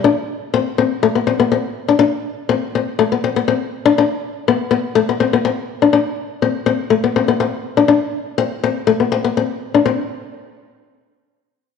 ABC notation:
X:1
M:4/4
L:1/16
Q:"Swing 16ths" 1/4=122
K:Am
V:1 name="Nylon-string guitar"
D2 z2 C2 C2 A, B, C B, C2 z D | D2 z2 C2 C2 A, B, C B, C2 z D | D2 z2 B,2 B,2 A, B, C B, C2 z D | D2 z2 C2 C2 A, B, C B, C2 z D |
D2 z2 C2 C2 A, B, C B, C2 z D | C2 z12 z2 |]